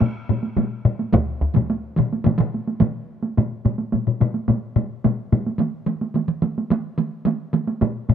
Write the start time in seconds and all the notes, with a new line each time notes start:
0.01 taiko low-mid, taiko high
0.29 taiko low-mid, taiko high
0.43 taiko high
0.57 taiko low-mid, taiko high
0.85 taiko low-mid
0.99 taiko high
1.13 taiko, taiko low-mid, taiko mid, taiko high
1.42 taiko
1.55 taiko low-mid, taiko mid, taiko high
1.70 taiko high
1.96 taiko low-mid, taiko mid
2.13 taiko high
2.24 taiko low-mid, taiko mid, taiko high
2.38 taiko low-mid, taiko mid
2.54 taiko high
2.67 taiko high
2.80 taiko low-mid, taiko mid, taiko high
3.23 taiko high
3.37 taiko low-mid, taiko high
3.65 taiko low-mid, taiko high
3.78 taiko high
3.92 taiko low-mid, taiko high
4.07 taiko low-mid
4.20 taiko low-mid, taiko high
4.34 taiko high
4.48 taiko low-mid, taiko high
4.76 taiko low-mid, taiko high
5.04 taiko low-mid, taiko high
5.32 taiko low-mid, taiko high
5.46 taiko high
5.58 taiko mid, taiko high
5.86 taiko mid, taiko high
6.01 taiko high
6.14 taiko mid, taiko high
6.28 taiko mid
6.42 taiko mid, taiko high
6.58 taiko high
6.70 taiko mid, taiko high
6.98 taiko mid, taiko high
7.25 taiko mid, taiko high
7.53 taiko mid, taiko high
7.67 taiko high
7.81 taiko low-mid, taiko high
8.09 taiko low-mid, taiko high